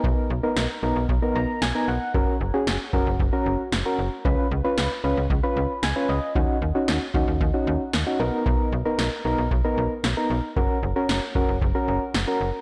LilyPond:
<<
  \new Staff \with { instrumentName = "Synth keys" } { \time 4/4 \key ces \lydian \tempo 4 = 114 << { r2 r8 ais''8 aes''8 fis''8 | r1 | r2. aes''8 ees''8 | r1 |
r1 | r1 | } \\ { <b dis' ais'>8 r16 <b dis' ais'>8 r16 <b dis' ais'>8 r16 <b dis' ais'>8 r8 <b dis' ais'>8 r16 | <des' ges' bes'>8 r16 <des' ges' aes'>8 r16 <des' ges' bes'>8 r16 <des' ges' bes'>8 r8 <des' ges' bes'>8 r16 | <des' f' ces''>8 r16 <des' f' ces''>8 r16 <des' f' ces''>8 r16 <des' f' ces''>8 r8 <des' f' ces''>8 r16 | <des' ees' ges'>8 r16 <des' ees' ges'>8 r16 <des' ees' ges'>8 r16 <des' ees' ges'>8 r8 <des' ees' ges'>16 <b dis' ais'>8~ |
<b dis' ais'>8 r16 <b dis' ais'>8 r16 <b dis' ais'>8 r16 <b dis' ais'>8 r8 <b dis' ais'>8 r16 | <des' ges' bes'>8 r16 <des' ges' bes'>8 r16 <des' ges' bes'>8 r16 <des' ges' bes'>8 r8 <des' ges' bes'>8 r16 | } >> }
  \new Staff \with { instrumentName = "FM bass" } { \clef bass \time 4/4 \key ces \lydian b,,16 r16 b,,16 r16 b,,16 r16 b,,16 b,,16 b,,16 r16 b,,16 r16 b,,16 r16 b,,16 r16 | ges,,16 r16 ges,,16 r16 ges,,16 r16 ges,,16 ges,,16 ges,,16 r16 ges,,16 r16 ges,,16 r16 ges,,16 r16 | des,16 r16 des,16 r16 des,16 r16 des,16 des,16 des,16 r16 des,16 r16 des,16 r16 des,16 r16 | ees,16 r16 ees,16 r16 ees,16 r16 ees,16 ees,16 ees,16 r16 ees,16 r16 ees,16 r16 b,,16 r16 |
b,,16 r16 b,,16 r16 b,,16 r16 b,,16 b,,16 b,,16 r16 b,,16 r16 b,,16 r16 b,,16 r16 | ges,,16 r16 ges,,16 r16 ges,,16 r16 ges,,16 ges,,16 ges,,16 r16 ges,,16 r16 ges,,16 r16 ges,,16 r16 | }
  \new DrumStaff \with { instrumentName = "Drums" } \drummode { \time 4/4 bd4 sn4 bd4 sn4 | bd4 sn8 bd8 bd4 sn4 | bd4 sn4 bd4 sn4 | bd4 sn8 bd8 bd4 sn4 |
bd4 sn4 bd4 sn4 | bd4 sn8 bd8 bd4 sn4 | }
>>